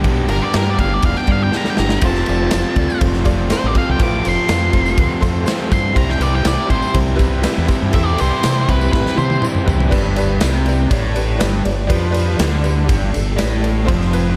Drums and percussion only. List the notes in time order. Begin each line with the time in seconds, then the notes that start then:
0.04 kick, ride
0.29 ride
0.54 snare, ride
0.79 kick, ride
1.02 kick, ride
1.15 snare
1.27 kick, ride
1.52 snare
1.65 snare
1.77 snare
1.89 snare
2.01 kick, ride, tambourine, crash
2.15 snare, tambourine
2.26 ride, tambourine
2.51 snare, ride, tambourine
2.76 kick, ride, tambourine
2.90 tambourine
3.01 kick, ride
3.14 snare, tambourine
3.25 kick, ride, tambourine
3.40 tambourine
3.50 snare, ride, tambourine
3.75 kick, ride
3.99 kick, ride, tambourine
4.25 ride, tambourine
4.49 snare, ride, tambourine
4.61 tambourine
4.73 kick, ride, tambourine
4.86 tambourine
4.98 kick, ride
5.10 tambourine
5.22 kick, ride, tambourine
5.36 tambourine
5.46 snare, ride, tambourine
5.71 kick, ride, tambourine
5.96 kick, ride, tambourine
6.09 snare, tambourine
6.21 ride, tambourine
6.45 snare, ride, tambourine
6.59 tambourine
6.70 kick, ride, tambourine
6.82 tambourine
6.94 kick, ride
7.08 tambourine
7.19 kick, ride, tambourine
7.32 tambourine
7.43 snare, ride, tambourine
7.68 kick, ride, tambourine
7.93 kick, ride, tambourine
8.08 tambourine
8.18 ride, tambourine
8.34 tambourine
8.43 snare, ride, tambourine
8.58 tambourine
8.69 kick, ride, tambourine
8.81 tambourine
8.93 kick, snare
9.06 snare, tambourine
9.18 high tom, tambourine
9.30 high tom, tambourine
9.42 mid tom, tambourine
9.55 mid tom, tambourine
9.68 floor tom, tambourine
9.80 floor tom, tambourine
9.92 kick, crash
10.16 ride, tambourine
10.41 snare, ride, tambourine
10.66 ride, tambourine
10.91 kick, ride, tambourine
11.16 ride, tambourine
11.40 snare, ride, tambourine
11.65 ride, tambourine
11.90 kick, ride
12.14 ride, tambourine
12.39 snare, ride, tambourine
12.64 ride, tambourine
12.89 kick, ride, tambourine
13.14 ride, tambourine
13.38 snare, ride, tambourine
13.64 ride, tambourine
13.88 kick, ride
14.01 snare
14.13 ride, tambourine